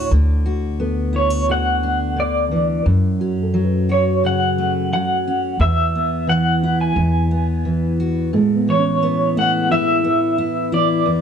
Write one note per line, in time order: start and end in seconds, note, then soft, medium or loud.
0.00 0.12 A2 medium
0.00 0.10 D3 medium
0.00 0.12 F#4 medium
0.00 0.42 F#4 medium
0.11 2.81 D2 medium
0.11 1.47 D3 medium
0.46 1.12 F#4 medium
0.80 2.81 B3 medium
0.80 2.61 A4 medium
1.13 1.30 E4 medium
1.13 1.51 C#5 medium
1.30 1.48 F#4 soft
1.48 2.15 D3 medium
1.48 2.82 F#4 medium
1.48 2.21 F#5 medium
1.83 2.82 D4 medium
2.16 2.51 D3 medium
2.16 2.83 D5 medium
2.51 2.86 E3 medium
2.86 5.55 F#2 medium
2.86 5.56 F#2 medium
3.20 4.23 C#4 medium
3.20 5.01 F#4 medium
3.42 5.20 A4 soft
3.54 4.91 F#3 medium
3.64 5.40 B4 soft
3.89 5.56 F#4 medium
3.89 4.22 C#5 medium
4.24 4.92 C#3 medium
4.24 5.26 C#4 medium
4.24 4.92 F#5 medium
4.58 5.56 A3 medium
4.93 5.56 F#3 medium
4.93 5.61 F#5 medium
5.28 5.57 C#4 medium
5.59 6.94 E2 medium
5.59 6.29 E5 medium
5.95 7.30 B3 soft
6.27 6.92 E3 medium
6.27 6.81 F#5 medium
6.63 7.27 E4 soft
6.63 7.99 E4 medium
6.81 7.97 G#5 medium
6.96 8.34 E2 medium
6.96 8.31 E2 medium
7.31 9.01 B3 medium
7.65 8.30 E3 medium
8.00 8.30 F#4 medium
8.33 11.06 A2 medium
8.33 10.14 G#3 medium
8.56 10.34 B3 medium
8.68 11.02 E3 medium
8.68 9.38 C#5 medium
8.78 10.53 C#4 soft
9.03 10.04 B3 medium
9.36 11.16 A3 soft
9.36 9.71 E4 medium
9.36 9.71 F#5 loud
9.70 10.71 E3 medium
9.70 10.37 E4 medium
9.70 10.74 E5 loud
10.04 11.21 B3 medium
10.38 10.71 E4 medium
10.72 11.21 E3 medium
10.72 11.21 E4 medium
10.72 11.21 D5 medium
11.06 11.21 E2 medium